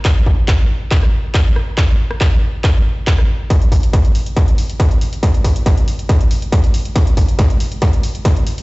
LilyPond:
\new DrumStaff \with { instrumentName = "Drums" } \drummode { \time 4/4 \tempo 4 = 139 <hc bd>8 bd8 <hc bd ss>4 <hc bd>16 ss8. <hc bd>8 ss8 | <hc bd>8. ss16 <hc bd>4 <hc bd ss>4 <hc bd>16 ss8. | <hh bd sn>16 hh16 <hho bd>16 hh16 <hh bd sn>16 hh16 hho16 hh16 <hh bd sn>16 hh16 hho16 hh16 <hh bd sn>16 hh16 hho16 hh16 | <hh bd sn>16 hh16 <hho bd>16 hh16 <hh bd sn>16 hh16 hho16 hh16 <hh bd sn>16 hh16 hho16 hh16 <hh bd sn>16 hh16 hho16 hh16 |
<hh bd sn>16 hh16 <hho bd>16 hh16 <hh bd sn>16 hh16 hho16 hh16 <hh bd sn>16 hh16 hho16 hh16 <hh bd sn>16 hh16 hho16 hh16 | }